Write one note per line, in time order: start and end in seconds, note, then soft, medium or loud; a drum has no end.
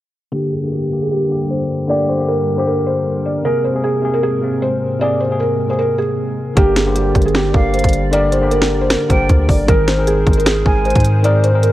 0.32 3.42 G2 medium
0.32 0.59 D3 medium
0.32 3.42 G3 medium
0.32 0.60 A#3 medium
0.32 3.42 D4 medium
0.32 0.51 G4 loud
0.32 0.61 G4 medium
0.32 6.53 A#4 medium
0.53 0.71 G#4 medium
0.62 0.88 D3 medium
0.62 0.89 A#3 medium
0.62 0.90 G4 medium
0.72 1.00 G4 medium
0.90 1.26 D3 medium
0.90 1.27 A#3 medium
0.90 1.27 G4 medium
1.02 1.11 G#4 medium
1.11 1.48 G4 medium
1.29 1.82 D3 medium
1.29 1.83 A#3 medium
1.29 1.84 G4 medium
1.50 1.87 C5 medium
1.88 2.15 D3 loud
1.88 2.16 A#3 medium
1.88 2.16 G4 loud
1.88 2.07 D5 loud
2.09 2.27 C5 medium
2.18 2.53 D3 medium
2.18 2.54 A#3 medium
2.18 2.54 G4 medium
2.28 2.56 A#4 medium
2.57 3.26 D3 medium
2.57 3.27 A#3 medium
2.57 3.28 G4 medium
2.57 2.66 C5 medium
2.67 2.85 A#4 medium
2.86 3.23 C5 medium
3.25 3.43 D5 medium
3.43 6.54 G#2 medium
3.43 3.71 C3 medium
3.43 6.54 G#3 medium
3.43 3.71 A#3 medium
3.43 6.54 C4 medium
3.43 3.72 G#4 loud
3.43 3.63 A#4 loud
3.64 3.82 C5 medium
3.73 4.00 C3 medium
3.73 4.00 A#3 medium
3.73 4.01 G#4 medium
3.84 4.12 G#4 medium
4.02 4.38 C3 medium
4.02 4.38 A#3 medium
4.02 4.39 G#4 medium
4.14 4.22 A#4 medium
4.23 4.60 G#4 medium
4.41 4.94 C3 medium
4.41 4.95 A#3 medium
4.41 4.96 C4 medium
4.62 4.98 C5 medium
4.99 5.27 C3 medium
4.99 5.27 A#3 medium
4.99 5.28 G#4 loud
4.99 5.19 D5 loud
5.20 5.38 C5 medium
5.29 5.64 C3 medium
5.29 5.65 A#3 medium
5.29 5.66 G#4 medium
5.40 5.68 A#4 medium
5.68 6.38 C3 medium
5.68 6.39 A#3 medium
5.68 6.39 G#4 medium
5.68 5.78 C5 medium
5.79 5.97 A#4 medium
5.98 6.53 G#4 medium
6.55 7.13 G1 loud
6.55 6.82 D3 medium
6.55 9.65 G3 medium
6.55 6.83 A#3 medium
6.55 6.75 G4 loud
6.55 9.65 G4 medium
6.55 6.83 G4 medium
6.55 11.72 A#4 medium
6.55 6.84 A#4 loud
6.55 9.65 D5 loud
6.55 kick loud
6.55 closed hi-hat medium
6.76 6.94 G#4 medium
6.76 snare medium
6.76 closed hi-hat medium
6.85 7.47 D3 medium
6.85 7.47 A#3 medium
6.85 7.47 G4 medium
6.85 7.48 C5 medium
6.95 7.24 G4 medium
6.95 closed hi-hat medium
7.15 7.52 G1 loud
7.15 kick medium
7.15 closed hi-hat soft
7.22 7.34 G#4 medium
7.22 closed hi-hat medium
7.28 closed hi-hat medium
7.34 7.71 G4 medium
7.34 snare loud
7.34 closed hi-hat medium
7.53 7.83 G1 loud
7.53 8.06 D3 medium
7.53 8.06 A#3 medium
7.53 8.07 G4 medium
7.53 8.07 A#4 medium
7.53 8.09 F5 medium
7.53 kick loud
7.74 8.10 C5 medium
7.74 closed hi-hat medium
7.79 closed hi-hat medium
7.84 8.97 G1 loud
7.84 kick medium
7.84 closed hi-hat medium
7.89 closed hi-hat medium
7.93 closed hi-hat medium
8.11 8.38 D3 loud
8.11 8.39 A#3 medium
8.11 8.39 G4 loud
8.11 8.40 A#4 loud
8.11 8.31 D5 loud
8.11 closed hi-hat medium
8.32 8.50 C5 medium
8.32 closed hi-hat medium
8.41 9.02 D3 medium
8.41 9.03 A#3 medium
8.41 9.03 G4 medium
8.41 9.04 A#4 medium
8.52 8.80 A#4 medium
8.52 closed hi-hat medium
8.62 snare medium
8.81 8.90 C5 medium
8.90 9.09 A#4 medium
8.90 snare loud
8.90 closed hi-hat medium
9.08 9.29 G1 loud
9.08 9.62 D3 medium
9.08 9.62 A#3 medium
9.08 9.63 G4 medium
9.08 9.63 A#4 medium
9.08 9.47 C5 medium
9.08 9.28 G5 medium
9.08 kick loud
9.08 closed hi-hat medium
9.29 9.48 D2 loud
9.29 kick medium
9.29 closed hi-hat medium
9.49 9.68 G1 loud
9.49 9.67 D5 medium
9.49 kick medium
9.49 open hi-hat medium
9.67 10.24 G#1 loud
9.67 9.94 D#3 loud
9.67 11.72 G#3 medium
9.67 9.95 C4 medium
9.67 11.72 G#4 medium
9.67 9.95 G#4 medium
9.67 9.86 A#4 loud
9.67 9.96 A#4 loud
9.67 11.72 C5 loud
9.67 kick loud
9.67 closed hi-hat medium
9.88 10.06 C5 medium
9.88 snare medium
9.88 closed hi-hat medium
9.97 10.58 D#3 medium
9.97 10.59 C4 medium
9.97 10.59 G#4 medium
9.97 10.60 A#4 medium
10.07 10.35 G#4 medium
10.07 closed hi-hat medium
10.27 10.64 G#1 loud
10.27 kick loud
10.27 closed hi-hat soft
10.33 10.46 A#4 medium
10.33 closed hi-hat medium
10.40 closed hi-hat medium
10.46 10.83 G#4 medium
10.46 snare loud
10.46 closed hi-hat medium
10.64 10.94 G#1 loud
10.64 11.18 D#3 medium
10.64 11.18 C4 medium
10.64 11.19 G#4 medium
10.64 11.19 A#4 medium
10.64 11.21 G#5 loud
10.64 kick loud
10.85 11.22 C5 medium
10.85 closed hi-hat medium
10.90 closed hi-hat medium
10.95 11.72 G#2 loud
10.95 kick medium
10.95 closed hi-hat medium
11.00 closed hi-hat medium
11.04 closed hi-hat medium
11.23 11.50 D#3 loud
11.23 11.50 C4 loud
11.23 11.51 G#4 medium
11.23 11.51 A#4 loud
11.23 11.42 D5 loud
11.23 closed hi-hat medium
11.44 11.62 C5 medium
11.44 closed hi-hat medium
11.52 11.72 D#3 medium
11.52 11.72 C4 medium
11.52 11.72 G#4 medium
11.52 11.72 A#4 medium
11.63 11.72 A#4 medium
11.63 closed hi-hat medium